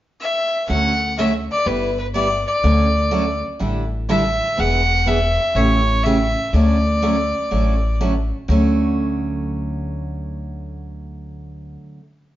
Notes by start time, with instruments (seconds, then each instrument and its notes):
0.21 fiddle E5
0.68 upright bass D2, steel-string acoustic guitar D3 F#3 A3 C#4 F#4, fiddle F#5
1.18 steel-string acoustic guitar D3 F#3 A3 C#4 F#4, fiddle E5
1.51 fiddle D5
1.66 upright bass G1, steel-string acoustic guitar G3 B3 E4 G4, fiddle B4
1.99 fiddle B4
2.14 steel-string acoustic guitar G3 B3 E4 G4, fiddle D5
2.48 fiddle D5
2.63 upright bass D2, steel-string acoustic guitar D3 F#3 A3 C#4 F#4
3.11 steel-string acoustic guitar D3 F#3 A3 C#4 F#4
3.59 upright bass A1, steel-string acoustic guitar D3 G3 D4 E4 A4
4.09 steel-string acoustic guitar D3 G3 D4 E4 A4, fiddle E5
4.57 upright bass E1, steel-string acoustic guitar E3 B3 D4 G#4, fiddle F#5
5.06 steel-string acoustic guitar E3 B3 D4 G#4, fiddle E5
5.55 upright bass A1, steel-string acoustic guitar C#3 E3 A3 C#4 G4, fiddle C#5
6.03 steel-string acoustic guitar C#3 E3 A3 C#4 G4, fiddle E5
6.53 upright bass D2, steel-string acoustic guitar D3 F#3 A3 C#4 F#4, fiddle D5
7.02 steel-string acoustic guitar D3 F#3 A3 C#4 F#4
7.51 upright bass A1, steel-string acoustic guitar D3 F#3 A3 C#4 F#4
8.01 steel-string acoustic guitar D3 F#3 A3 C#4 F#4
8.48 upright bass D2, steel-string acoustic guitar D3 F#3 A3 C#4 F#4